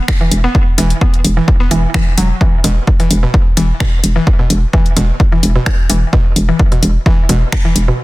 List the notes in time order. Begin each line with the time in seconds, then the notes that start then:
0.08 finger snap, kick
0.21 E3
0.31 E1, closed hi-hat
0.44 B3
0.55 kick
0.78 E1 E3, closed hi-hat
0.90 closed hi-hat
1.01 B3, kick
1.14 closed hi-hat
1.24 E1, closed hi-hat
1.37 E3
1.48 kick
1.60 B3
1.71 E1 E3, closed hi-hat
1.94 E3, finger snap, kick
2.18 E1 F#3, closed hi-hat
2.41 E3, kick
2.64 E1 B2, closed hi-hat
2.87 kick
3.00 E3, closed hi-hat
3.11 E1, closed hi-hat
3.23 B2
3.34 kick
3.57 E1 E3, closed hi-hat
3.80 B2, finger snap, kick
4.04 E1, closed hi-hat
4.16 E3
4.27 kick
4.39 B2
4.50 E1, closed hi-hat
4.73 E3, kick
4.86 closed hi-hat
4.97 E1 B2, closed hi-hat
5.20 kick
5.32 E3
5.43 E1, closed hi-hat
5.56 B2
5.66 finger snap, kick
5.90 E1 E3, closed hi-hat
6.13 B2, kick
6.36 E1, closed hi-hat
6.49 E3
6.59 kick
6.72 B2, closed hi-hat
6.83 E1, closed hi-hat
7.06 E3, kick
7.29 E1 B2, closed hi-hat
7.52 finger snap, kick
7.65 E3
7.76 E1, closed hi-hat
7.88 B2